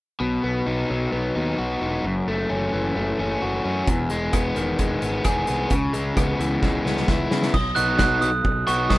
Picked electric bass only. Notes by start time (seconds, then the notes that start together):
0.21 B1
0.44 B1
0.67 B1
0.90 B1
1.13 B1
1.36 D#2
1.59 B1
1.82 E1
2.04 F#1
2.28 F#1
2.51 F#1
2.74 F#1
2.96 F#1
3.19 F#1
3.43 F#1
3.65 F#2
3.88 E1
4.12 E1
4.34 E1
4.57 E1
4.79 E1
5.02 G#1
5.25 E1
5.49 C2
5.71 C#2
5.94 C#2
6.17 C#2
6.40 C#2
6.63 C#2
6.86 C#2
7.08 C#2
7.32 C#3
7.54 B1
7.77 B1
8.00 B1
8.22 B1
8.45 B1
8.69 B1
8.91 B1